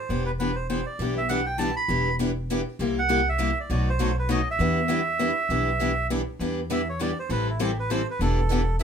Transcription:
Already playing: melodica C5
0.09 upright bass E1, steel-string acoustic guitar E3 B3 D4 G4
0.26 melodica B4
0.39 steel-string acoustic guitar E3 B3 D4 G4, melodica B4
0.56 melodica C5
0.70 steel-string acoustic guitar E3 B3 D4 G4, melodica C5
0.86 melodica D5
0.99 upright bass B1, steel-string acoustic guitar E3 G3 B3 D4 E4 G4 B4
1.18 melodica E5
1.29 steel-string acoustic guitar E3 G3 B3 D4 E4 G4 B4, melodica F#5
1.46 melodica G5
1.58 steel-string acoustic guitar E3 G3 B3 D4 E4 G4 B4, melodica A5
1.76 melodica B5
1.88 upright bass E1, steel-string acoustic guitar E3 G3 B3 D4 E4 G4 B4
2.19 steel-string acoustic guitar E3 G3 B3 D4 E4 G4 B4
2.50 steel-string acoustic guitar E3 G3 B3 D4 E4 G4 B4
2.79 upright bass C2, steel-string acoustic guitar C3 G3 A#3 E4 G4
2.99 melodica F#5
3.09 steel-string acoustic guitar C3 G3 A#3 E4 G4
3.29 melodica E5
3.39 steel-string acoustic guitar C3 G3 A#3 E4 G4
3.60 melodica D5
3.70 upright bass B1, steel-string acoustic guitar B2 D#3 F#3 A3 B3 D#4 F#4 A4, melodica D5
3.90 melodica C5
3.99 steel-string acoustic guitar B2 D#3 F#3 A3 B3 D#4 F#4 A4
4.19 melodica B4
4.29 steel-string acoustic guitar B2 D#3 F#3 A3 B3 D#4 F#4 A4, melodica D#5
4.51 melodica E5
4.59 upright bass E2, steel-string acoustic guitar E3 G3 B3 D4 E4 G4 B4
4.88 steel-string acoustic guitar E3 G3 B3 D4 E4 G4 B4
5.19 steel-string acoustic guitar E3 G3 B3 D4 E4 G4 B4
5.49 upright bass B1, steel-string acoustic guitar E3 G3 B3 D4 E4 G4 B4
5.79 steel-string acoustic guitar E3 G3 B3 D4 E4 G4 B4
6.10 steel-string acoustic guitar E3 G3 B3 D4 E4 G4 B4
6.39 upright bass E2, steel-string acoustic guitar E3 G3 B3 D4 E4 G4 B4
6.70 steel-string acoustic guitar E3 G3 B3 D4 E4 G4 B4, melodica E5
6.89 melodica C#5
7.00 steel-string acoustic guitar E3 G3 B3 D4 E4 G4 B4, melodica D5
7.19 melodica C5
7.29 upright bass A1, steel-string acoustic guitar E3 G3 C4 E4 A4, melodica B4
7.49 melodica E4
7.59 steel-string acoustic guitar E3 G3 C4 E4 A4, melodica G4
7.80 melodica B4
7.90 steel-string acoustic guitar E3 G3 C4 E4 A4, melodica C5
8.10 melodica B4
8.19 upright bass E1, steel-string acoustic guitar E3 G3 B3 D4 E4 G4 B4, melodica A4
8.49 steel-string acoustic guitar E3 G3 B3 D4 E4 G4 B4
8.79 steel-string acoustic guitar E3 G3 D4

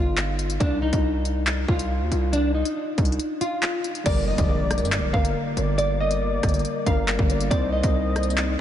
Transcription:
Already playing: 808-style bass G1, nylon-string guitar F4
0.17 clap, closed hi-hat
0.39 closed hi-hat
0.50 closed hi-hat
0.60 808-style bass C2, nylon-string guitar D4, kick, closed hi-hat
0.82 nylon-string guitar D#4
0.93 808-style bass C2, kick, closed hi-hat
1.25 closed hi-hat
1.47 clap, closed hi-hat
1.68 808-style bass C2, nylon-string guitar F4, kick
1.79 closed hi-hat
2.01 808-style bass D#2
2.12 808-style bass C2, closed hi-hat
2.33 nylon-string guitar D4, closed hi-hat
2.54 nylon-string guitar D#4
2.65 closed hi-hat
2.98 808-style bass C2, kick, closed hi-hat
3.05 closed hi-hat
3.12 closed hi-hat
3.19 closed hi-hat
3.41 nylon-string guitar F4, closed hi-hat
3.63 clap, closed hi-hat
3.84 closed hi-hat
3.95 closed hi-hat
4.04 808-style bass G1, synth keys D3 G3 A#4, glass harmonica G3 A#3 A#4, nylon-string guitar D5, soft synth lead D5, kick, closed hi-hat, crash, impact
4.28 nylon-string guitar D#5
4.38 808-style bass A#1, kick, closed hi-hat
4.71 cross-stick, closed hi-hat
4.78 808-style bass G2, closed hi-hat
4.85 closed hi-hat
4.92 clap, closed hi-hat
4.98 808-style bass A#1
5.13 808-style bass G1, soft synth lead A#4, nylon-string guitar F5, kick
5.25 closed hi-hat
5.57 808-style bass G1, soft synth lead D5, closed hi-hat
5.78 nylon-string guitar D5, closed hi-hat
6.00 nylon-string guitar D#5
6.11 closed hi-hat
6.43 808-style bass G1, kick, cross-stick, closed hi-hat
6.49 closed hi-hat
6.54 closed hi-hat
6.59 closed hi-hat
6.65 closed hi-hat
6.86 808-style bass G1, synth keys G3 D4 A#4, soft synth lead A#4, nylon-string guitar F5, kick, closed hi-hat
7.08 clap, closed hi-hat
7.19 808-style bass G1, kick
7.30 soft synth lead D5, closed hi-hat
7.41 closed hi-hat
7.50 808-style bass C2, synth keys C4 D#4 C5, glass harmonica D#4 C5, nylon-string guitar D5, soft synth lead D#5, kick, closed hi-hat
7.72 nylon-string guitar D#5
7.83 808-style bass C2, kick, closed hi-hat
8.16 cross-stick, closed hi-hat
8.23 closed hi-hat
8.30 closed hi-hat
8.37 clap, closed hi-hat

